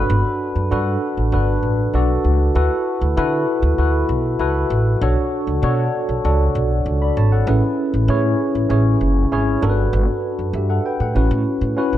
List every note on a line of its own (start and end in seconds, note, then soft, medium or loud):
0.00 0.52 D4 medium
0.00 0.53 F#4 medium
0.00 0.53 A4 medium
0.00 0.53 B4 loud
0.10 0.21 G1 loud
0.56 0.71 F#2 medium
0.71 0.95 G2 medium
0.71 1.11 D4 medium
0.71 1.11 F#4 medium
0.71 1.12 A4 medium
0.71 1.12 B4 medium
1.17 1.34 A1 medium
1.32 1.56 G1 medium
1.32 1.73 D4 medium
1.32 1.73 F#4 medium
1.32 1.73 A4 medium
1.32 1.73 B4 medium
1.63 1.86 A1 medium
1.93 2.17 B1 medium
1.93 2.34 D4 medium
1.93 2.35 F#4 medium
1.93 2.35 A4 medium
1.93 2.35 D5 medium
2.24 2.48 C#2 medium
2.55 2.67 D2 loud
2.55 2.95 E4 medium
2.55 2.96 F#4 medium
2.55 2.96 A4 medium
2.55 2.96 B4 medium
3.01 3.13 D2 loud
3.17 3.41 D3 loud
3.17 3.57 E4 medium
3.17 3.57 F#4 medium
3.17 3.57 A4 medium
3.17 3.58 B4 loud
3.62 3.75 D2 loud
3.78 4.02 D2 medium
3.78 4.19 E4 medium
3.78 4.19 F#4 medium
3.78 4.19 A4 medium
3.78 4.19 B4 medium
4.09 4.33 B1 loud
4.39 4.63 C#2 medium
4.39 4.80 E4 medium
4.39 4.80 F#4 medium
4.39 4.80 A4 medium
4.39 4.80 B4 medium
4.70 4.94 A1 loud
5.01 5.13 B1 loud
5.01 5.41 D4 medium
5.01 5.42 F#4 medium
5.01 5.42 A4 medium
5.01 5.42 C#5 loud
5.47 5.59 C#2 medium
5.63 5.86 B2 loud
5.63 6.03 D4 medium
5.63 6.03 F#4 medium
5.63 6.03 A4 medium
5.63 6.04 C#5 loud
6.09 6.24 B1 medium
6.25 6.48 C#2 loud
6.25 6.65 D4 medium
6.25 6.65 F#4 medium
6.25 6.65 A4 medium
6.25 6.65 D5 medium
6.55 6.79 B1 loud
6.86 7.09 C#2 loud
7.02 7.17 D5 soft
7.02 7.16 B5 medium
7.17 7.40 G#1 loud
7.17 7.32 C#5 medium
7.17 7.32 A5 medium
7.32 7.62 A4 medium
7.32 7.61 F#5 medium
7.47 7.59 A1 loud
7.47 7.87 C#4 medium
7.47 7.88 E4 medium
7.47 7.88 G#4 medium
7.47 7.88 B4 loud
7.94 8.05 A1 medium
8.08 8.32 A2 loud
8.08 8.49 C#4 medium
8.08 8.49 E4 medium
8.08 8.49 G#4 medium
8.08 8.49 C#5 loud
8.55 8.67 A1 medium
8.70 8.93 A1 loud
8.70 9.10 C#4 medium
8.70 9.10 E4 medium
8.70 9.10 G#4 medium
8.70 9.11 C#5 medium
9.01 9.24 F#1 medium
9.32 9.55 G#1 medium
9.32 9.62 C#4 medium
9.32 9.63 E4 medium
9.32 9.63 G#4 medium
9.32 9.63 C#5 loud
9.62 9.86 G1 loud
9.62 10.36 D4 medium
9.62 10.36 F#4 medium
9.62 10.37 A4 medium
9.62 9.69 A#4 medium
9.70 10.40 B4 loud
9.93 10.05 G1 loud
10.39 10.51 F#2 medium
10.53 10.77 G2 loud
10.53 10.70 G4 medium
10.53 10.70 E5 medium
10.70 10.85 A4 medium
10.70 10.84 F#5 medium
10.86 11.00 B4 medium
10.86 11.00 G5 medium
11.00 11.12 A2 medium
11.00 11.31 A4 medium
11.00 11.30 F#5 medium
11.15 11.28 A1 medium
11.15 11.56 C#4 medium
11.15 11.56 E4 medium
11.15 11.56 F#4 medium
11.15 11.56 B4 medium
11.31 11.43 A2 loud
11.61 11.73 A2 medium
11.77 11.98 C#4 medium
11.77 11.98 E4 medium
11.77 11.98 F#4 medium
11.77 11.98 B4 medium
11.93 11.98 A1 medium